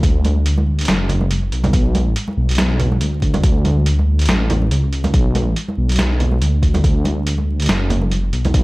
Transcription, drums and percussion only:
0.03 kick, closed hi-hat
0.25 closed hi-hat, high conga
0.46 closed hi-hat
0.58 high conga
0.79 closed hi-hat
0.81 closed hi-hat
0.85 snare, closed hi-hat
0.88 closed hi-hat, high conga
1.09 closed hi-hat, low conga
1.21 high conga
1.31 closed hi-hat
1.52 closed hi-hat
1.64 closed hi-hat, high conga, low conga
1.73 kick, closed hi-hat
1.95 closed hi-hat, high conga
2.16 closed hi-hat
2.28 high conga
2.49 closed hi-hat
2.51 closed hi-hat
2.55 snare, closed hi-hat
2.58 closed hi-hat, high conga
2.80 closed hi-hat, low conga
2.92 high conga
3.01 closed hi-hat
3.22 kick, closed hi-hat
3.34 closed hi-hat, high conga, low conga
3.43 kick, closed hi-hat
3.65 closed hi-hat, high conga
3.86 closed hi-hat
3.99 high conga
4.19 closed hi-hat
4.22 closed hi-hat
4.26 snare, closed hi-hat
4.29 closed hi-hat, high conga
4.50 closed hi-hat, low conga
4.62 high conga
4.71 closed hi-hat
4.93 closed hi-hat
5.04 closed hi-hat, high conga, low conga
5.14 kick, closed hi-hat
5.35 closed hi-hat, high conga
5.56 closed hi-hat
5.68 high conga
5.89 closed hi-hat
5.92 closed hi-hat
5.96 snare, closed hi-hat, high conga
5.99 closed hi-hat
6.20 closed hi-hat, low conga
6.31 high conga
6.42 closed hi-hat
6.63 kick, closed hi-hat
6.74 closed hi-hat, high conga, low conga
6.84 kick, closed hi-hat
7.05 closed hi-hat, high conga
7.27 closed hi-hat
7.38 high conga
7.60 closed hi-hat
7.62 closed hi-hat
7.66 snare, closed hi-hat, high conga
7.69 closed hi-hat
7.90 closed hi-hat, low conga
8.02 high conga
8.12 closed hi-hat
8.33 closed hi-hat
8.45 closed hi-hat, high conga, low conga
8.54 kick, closed hi-hat

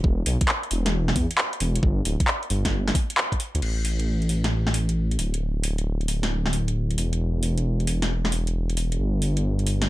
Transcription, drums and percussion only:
0.04 kick
0.26 open hi-hat
0.41 kick, closed hi-hat
0.48 clap
0.63 closed hi-hat
0.71 open hi-hat
0.86 snare, closed hi-hat
1.08 snare
1.16 kick, open hi-hat
1.31 closed hi-hat
1.38 clap
1.53 closed hi-hat
1.60 open hi-hat
1.76 closed hi-hat
1.83 kick
2.05 open hi-hat
2.20 kick, closed hi-hat
2.28 clap
2.43 closed hi-hat
2.50 open hi-hat
2.65 kick, snare, closed hi-hat
2.88 snare, closed hi-hat
2.95 kick, open hi-hat
3.10 closed hi-hat
3.18 clap
3.32 kick, closed hi-hat
3.40 open hi-hat
3.55 closed hi-hat
3.62 crash
3.85 open hi-hat
4.00 closed hi-hat
4.22 closed hi-hat
4.29 open hi-hat
4.44 snare, closed hi-hat
4.67 snare
4.74 open hi-hat
4.89 closed hi-hat
5.11 closed hi-hat
5.19 open hi-hat
5.34 closed hi-hat
5.64 open hi-hat
5.78 closed hi-hat
6.01 closed hi-hat
6.08 open hi-hat
6.23 snare, closed hi-hat
6.46 snare
6.53 open hi-hat
6.68 closed hi-hat
6.91 closed hi-hat
6.98 open hi-hat
7.13 closed hi-hat
7.43 open hi-hat
7.58 closed hi-hat
7.80 closed hi-hat
7.87 open hi-hat
8.02 snare, closed hi-hat
8.25 snare
8.32 open hi-hat
8.47 closed hi-hat
8.70 closed hi-hat
8.77 open hi-hat
8.92 closed hi-hat
9.22 open hi-hat
9.37 closed hi-hat
9.59 closed hi-hat
9.67 open hi-hat
9.82 snare, closed hi-hat

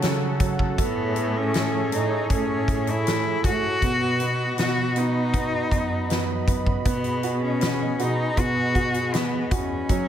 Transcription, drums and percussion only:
0.02 snare, closed hi-hat
0.40 kick, closed hi-hat
0.59 kick
0.78 kick, closed hi-hat
1.16 closed hi-hat
1.54 snare, closed hi-hat
1.92 closed hi-hat
2.30 kick, closed hi-hat
2.68 kick, closed hi-hat
2.87 closed hi-hat
3.07 snare, closed hi-hat
3.44 kick, closed hi-hat
3.82 kick, closed hi-hat
4.20 closed hi-hat
4.58 snare, closed hi-hat
4.96 closed hi-hat
5.34 kick, closed hi-hat
5.71 kick, closed hi-hat
6.10 snare, closed hi-hat
6.48 kick, closed hi-hat
6.67 kick
6.85 kick, closed hi-hat
7.04 closed hi-hat
7.23 closed hi-hat
7.61 snare, closed hi-hat
7.99 closed hi-hat
8.37 kick, closed hi-hat
8.75 kick, closed hi-hat
8.94 closed hi-hat
9.14 snare, closed hi-hat
9.51 kick, closed hi-hat
9.89 kick, closed hi-hat

